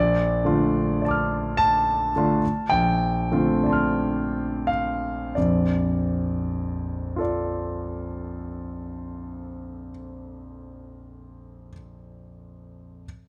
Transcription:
Already playing: A#1 D5
0.44 D3 A3 D4 F4
1.02 D5 A5
1.08 D6 F6
1.57 A5
2.16 D3 A3 D4 F4
2.69 A#1 G5
3.32 D3 A3 C4 F4
3.63 D5 A5
3.70 C6 F6
4.67 F5
5.35 A#1 F2 D5
7.16 F4 A4
7.21 D5

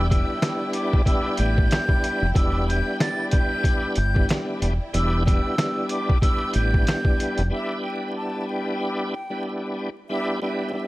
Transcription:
Already playing: E1 E4 D5 G5
0.10 G3 B3 D4 E4 G4 E6, kick, closed hi-hat
0.41 G3 B3 D4 E4 G4, snare, closed hi-hat
0.73 D6, closed hi-hat
0.93 kick
1.05 G3 B3 D4 E4 G4 E6, kick, closed hi-hat
1.37 A1 G6, closed hi-hat
1.58 kick
1.71 snare, closed hi-hat
1.89 kick
2.04 closed hi-hat
2.22 F1
2.34 E1 G3 B3 D4 E4 G4 E6, kick, closed hi-hat
2.69 G6, closed hi-hat
3.00 A6, snare, closed hi-hat
3.31 G6, kick, closed hi-hat
3.64 kick, closed hi-hat
3.96 G1 G6, closed hi-hat
4.14 G3 B3 D4 E4 G4, kick
4.29 snare, closed hi-hat
4.62 E1, closed hi-hat
4.93 E1 G3 B3 D4 E4 G4 E6, closed hi-hat
5.26 G3 B3 D4 E4 G4 E6, kick, closed hi-hat
5.57 G3 B3 D4 E4 G4, snare, closed hi-hat
5.89 D6, closed hi-hat
6.09 kick
6.22 G3 B3 D4 E4 G4 E6, kick, closed hi-hat
6.54 A1 G6, closed hi-hat
6.74 kick
6.87 snare, closed hi-hat
7.05 kick
7.20 closed hi-hat
7.38 F1, closed hi-hat
7.50 G3 B3 D4 E4 G4 E5
7.82 G5
8.16 A5
8.49 G5
9.13 G5
9.30 G3 B3 D4 E4 G4
10.09 G3 B3 D4 E4 G4 E5
10.42 G3 B3 D4 E4 G4 E5
10.73 G3 B3 D4 E4 G4

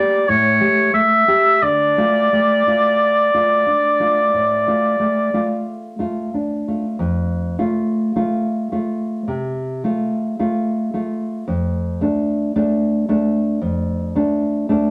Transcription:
Already playing: A#3 G4 D5
0.28 A2 C#5
0.61 A3 G4
0.93 A3 E5
1.28 A3 G4
1.62 D3 D5
1.98 A3 F4
2.33 A3
2.67 A3 F4
3.34 A3 F4
3.66 D4
4.00 A3 F4
4.34 A2
4.67 A3 F4
5.00 A3
5.34 A3 F4
5.99 A3 F4
6.34 D4
6.68 A3 F4
6.99 F2
7.59 A3 F4
8.16 A3 F4
8.72 A3 F4
9.28 C3
9.84 A3 F4
10.39 A3 F4
10.94 A3 F4
11.48 F2
12.01 A3 D4
12.56 A3 D4
13.09 A3 D4
13.62 F2
14.15 A3 D4
14.69 A3 D4

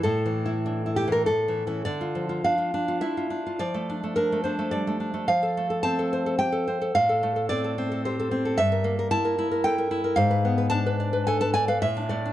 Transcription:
0.03 A2 A4
0.26 E3
0.46 E4
0.66 D4
0.86 E4
0.96 G4
1.08 E3
1.12 A#4
1.26 A2 A4
1.48 E3
1.67 E3 C#4
1.85 D3 D5
2.01 F4
2.15 F3
2.29 F4
2.44 D4 F5
2.58 F4
2.74 D4
2.88 F4
3.01 E4 E5
3.17 F4
3.30 D4
3.46 F4
3.59 F3 D5
3.74 A3
3.90 D4
4.04 A3
4.16 D4 A#4
4.32 A3
4.44 D4 C5
4.59 A3
4.71 G3 D5
4.87 A3
5.00 D4
5.14 A3
5.28 F3 F5
5.43 A4
5.57 A3
5.70 A4
5.83 C4 A5
5.99 A4
6.13 C5
6.26 A4
6.39 G4 G5
6.52 A4
6.68 C5
6.82 A4
6.95 A2 F5
7.09 A4
7.23 A3
7.36 A4
7.49 C4 D5
7.64 A4
7.78 C4
7.92 A4
8.05 G4 C5
8.20 A4
8.31 C4
8.45 A4
8.58 G2 E5
8.72 A#4
8.84 A#3
8.99 A#4
9.11 E4 A5
9.25 A#4
9.39 E4
9.51 A#4
9.64 A4 G5
9.78 A#4
9.91 E4
10.04 A#4
10.16 G#2 F5
10.30 B4
10.45 B3
10.58 B4
10.70 D4 A5
10.86 B4
11.00 D5
11.13 B4
11.27 A4 G#5
11.41 B4 A5
11.54 D5 G#5
11.68 B4 F5
11.82 A2 E5
11.97 D4
12.09 A3 D5
12.25 D4

